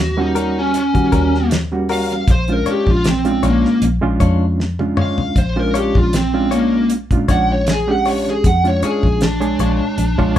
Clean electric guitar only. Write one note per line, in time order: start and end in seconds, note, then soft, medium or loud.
0.35 0.61 G3 medium
0.35 0.61 C#4 medium
0.35 0.60 F#4 medium
0.35 0.60 A#4 medium
1.12 1.38 G3 medium
1.12 1.37 C#4 medium
1.12 1.37 F#4 medium
1.12 1.37 A#4 medium
1.89 2.15 G3 soft
1.89 2.14 C#4 medium
1.89 2.14 F#4 medium
1.89 2.14 A#4 medium
2.66 2.91 G#3 medium
2.66 2.91 D4 medium
2.66 2.91 F4 medium
2.66 2.91 C#5 medium
3.43 3.68 G#3 medium
3.43 3.68 D4 medium
3.43 3.68 F4 medium
3.43 3.67 C#5 medium
4.20 4.45 G#3 medium
4.20 4.45 D4 medium
4.20 4.45 F4 medium
4.20 4.45 C#5 medium
4.97 5.22 G#3 medium
4.97 5.22 D4 medium
4.97 5.22 F4 medium
4.97 5.21 C#5 medium
5.74 5.99 G#3 medium
5.74 5.99 D4 medium
5.74 5.99 F4 medium
5.74 5.98 C#5 medium
6.51 6.76 G#3 medium
6.51 6.76 D4 medium
6.51 6.76 F4 medium
6.51 6.75 C#5 medium
7.28 7.54 G#3 medium
7.28 7.53 D4 medium
7.28 7.53 F4 medium
7.28 7.53 C#5 medium
8.06 8.31 G#3 medium
8.06 8.30 D4 medium
8.06 8.30 F4 medium
8.06 8.30 C#5 medium
8.83 9.08 G#3 medium
8.83 9.08 D4 medium
8.83 9.07 F4 medium
8.83 9.07 C#5 medium
9.60 9.85 G#3 medium
9.60 9.85 D4 medium
9.60 9.84 F4 medium
9.60 9.84 C#5 medium